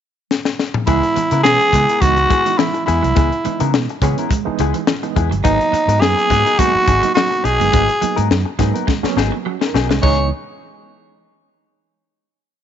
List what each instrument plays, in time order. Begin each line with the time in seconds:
0.31 snare
0.45 snare
0.59 snare
0.74 mid tom
0.87 fingered electric bass C#2, reed electric piano E3 G#3 B3 E4, hollow-body jazz guitar G#3 B3 E4 G#4, clean electric guitar G#3, tenor saxophone E4, kick, closed hi-hat
1.03 muted hollow-body jazz guitar stroke, closed hi-hat
1.16 clean electric guitar E3, muted fingered electric bass stroke, muted hollow-body jazz guitar stroke, closed hi-hat
1.31 fingered electric bass C#3, hollow-body jazz guitar G#3 B3 E4 A#4, muted clean electric guitar stroke, closed hi-hat
1.44 fingered electric bass B2, reed electric piano E3 G#3 B3 C#4, tenor saxophone G#4, snare
1.60 muted hollow-body jazz guitar stroke, closed hi-hat
1.73 fingered electric bass C#3, clean electric guitar G#3, hollow-body jazz guitar G#3 B3 E4 G#4, kick, snare, closed hi-hat
1.89 hollow-body jazz guitar G#3 B3 E4 A#4, closed hi-hat
2.01 fingered electric bass C#2, reed electric piano E3 G#3 B3 D#4, clean electric guitar G#3, tenor saxophone F#4, kick, closed hi-hat
2.17 muted hollow-body jazz guitar stroke, closed hi-hat
2.30 hollow-body jazz guitar G#3 B3 E4 G#4, muted clean electric guitar stroke, kick, closed hi-hat
2.44 reed electric piano E3 G#3 B3 D#4, clean electric guitar E3, muted hollow-body jazz guitar stroke, closed hi-hat
2.58 clean electric guitar E3, tenor saxophone E4, muted hollow-body jazz guitar stroke, snare
2.74 muted clean electric guitar stroke, muted hollow-body jazz guitar stroke, closed hi-hat
2.86 fingered electric bass E2, hollow-body jazz guitar G#3 B3 E4 G#4, tenor saxophone E4, closed hi-hat
3.02 fingered electric bass C2, reed electric piano E3 G#3 B3 E4, clean electric guitar F#3, muted hollow-body jazz guitar stroke, closed hi-hat
3.15 fingered electric bass C#2, hollow-body jazz guitar G#3 B3 E4 G#4, clean electric guitar G#3, kick, closed hi-hat
3.31 muted hollow-body jazz guitar stroke, closed hi-hat
3.45 reed electric piano E3 G#3 B3 D#4, clean electric guitar E3, muted hollow-body jazz guitar stroke, muted fingered electric bass stroke, closed hi-hat
3.60 fingered electric bass C#3, hollow-body jazz guitar G#3 B3 E4 A#4, muted clean electric guitar stroke, closed hi-hat
3.74 fingered electric bass B2, muted hollow-body jazz guitar stroke, snare
3.89 muted hollow-body jazz guitar stroke, closed hi-hat
4.02 fingered electric bass C#3, reed electric piano E3 G#3 B3 C#4, clean electric guitar G#3, hollow-body jazz guitar G#3 B3 E4 G#4, kick, closed hi-hat
4.18 hollow-body jazz guitar G#3 B3 E4 A#4, closed hi-hat
4.31 clean electric guitar G#3, kick, closed hi-hat
4.45 reed electric piano E3 G#3 B3 D#4, muted hollow-body jazz guitar stroke, muted fingered electric bass stroke
4.59 fingered electric bass C#2, hollow-body jazz guitar G#3 B3 E4 G#4, muted clean electric guitar stroke, closed hi-hat
4.74 clean electric guitar E3, muted hollow-body jazz guitar stroke, closed hi-hat
4.87 clean electric guitar E3, muted hollow-body jazz guitar stroke, snare
5.03 reed electric piano E3 G#3 B3 D#4, muted clean electric guitar stroke, muted hollow-body jazz guitar stroke, closed hi-hat
5.16 fingered electric bass E2, hollow-body jazz guitar G#3 B3 E4 G#4, kick, closed hi-hat
5.31 fingered electric bass G1, clean electric guitar F#3, muted hollow-body jazz guitar stroke, closed hi-hat
5.44 fingered electric bass G#1, hollow-body jazz guitar F#3 B3 D#4 G#4, reed electric piano F#3 A#3 B3 D#4, clean electric guitar B3, tenor saxophone D#4, kick, closed hi-hat
5.60 muted hollow-body jazz guitar stroke, closed hi-hat
5.73 clean electric guitar F#3, muted fingered electric bass stroke, muted hollow-body jazz guitar stroke, closed hi-hat
5.88 fingered electric bass G#2, hollow-body jazz guitar F#3 B3 D#4 A#4, muted clean electric guitar stroke, closed hi-hat
6.00 fingered electric bass F#2, reed electric piano F#3 A#3 B3 D#4, tenor saxophone G#4, muted hollow-body jazz guitar stroke, snare
6.17 muted hollow-body jazz guitar stroke, closed hi-hat
6.30 fingered electric bass G#2, hollow-body jazz guitar F#3 B3 D#4 G#4, clean electric guitar G#3, kick, snare, closed hi-hat
6.45 hollow-body jazz guitar F#3 B3 D#4 A#4, closed hi-hat
6.59 hollow-body jazz guitar F#3 B3 D#4 G#4, reed electric piano F#3 A#3 B3 D#4, clean electric guitar G#3, tenor saxophone F#4, kick, closed hi-hat
6.74 muted hollow-body jazz guitar stroke, muted fingered electric bass stroke
6.88 fingered electric bass G#1, hollow-body jazz guitar F#3 B3 D#4 G#4, kick, closed hi-hat
7.03 clean electric guitar F#3, reed electric piano F#3 A#3 B3 D#4, muted hollow-body jazz guitar stroke, closed hi-hat
7.15 clean electric guitar F#3, tenor saxophone F#4, muted hollow-body jazz guitar stroke, snare
7.30 muted hollow-body jazz guitar stroke, muted clean electric guitar stroke, closed hi-hat
7.44 fingered electric bass B1, hollow-body jazz guitar F#3 B3 D#4 G#4, tenor saxophone G#4, closed hi-hat
7.59 fingered electric bass G1, reed electric piano F#3 A#3 B3 D#4, clean electric guitar G#3, muted hollow-body jazz guitar stroke, closed hi-hat
7.73 fingered electric bass G#1, hollow-body jazz guitar F#3 B3 D#4 G#4, clean electric guitar B3, kick, closed hi-hat
7.88 muted hollow-body jazz guitar stroke, closed hi-hat
8.01 clean electric guitar F#3, reed electric piano F#3 A#3 B3 D#4, muted hollow-body jazz guitar stroke, muted fingered electric bass stroke, closed hi-hat
8.16 fingered electric bass G#2, hollow-body jazz guitar F#3 B3 D#4 A#4, muted clean electric guitar stroke, closed hi-hat
8.30 fingered electric bass F#2, muted hollow-body jazz guitar stroke, snare
8.45 muted hollow-body jazz guitar stroke
8.59 fingered electric bass G#2, hollow-body jazz guitar F#3 B3 D#4 G#4, reed electric piano F#3 A#3 B3 D#4, clean electric guitar G#3, kick, snare, closed hi-hat
8.74 hollow-body jazz guitar F#3 B3 D#4 A#4, closed hi-hat
8.87 clean electric guitar G#3, kick, snare
9.03 reed electric piano F#3 A#3 B3 C#4, muted hollow-body jazz guitar stroke, muted fingered electric bass stroke, snare
9.16 fingered electric bass G#1, hollow-body jazz guitar F#3 B3 D#4 G#4, muted clean electric guitar stroke, snare
9.32 clean electric guitar F#3, muted hollow-body jazz guitar stroke
9.45 clean electric guitar F#3, reed electric piano C#4 F#4, muted hollow-body jazz guitar stroke
9.61 reed electric piano D#4 A#4, muted clean electric guitar stroke, muted hollow-body jazz guitar stroke, snare
9.74 fingered electric bass B1, hollow-body jazz guitar F#3 B3 D#4 G#4, snare
9.89 fingered electric bass C2, clean electric guitar G#3, reed electric piano D#4 G#4, muted hollow-body jazz guitar stroke, snare
10.02 fingered electric bass C#2, hollow-body jazz guitar E3 B3 C#4 G#4, reed electric piano E3 G#3 B3 D#4, clean electric guitar G#3, tenor saxophone C#5, kick, crash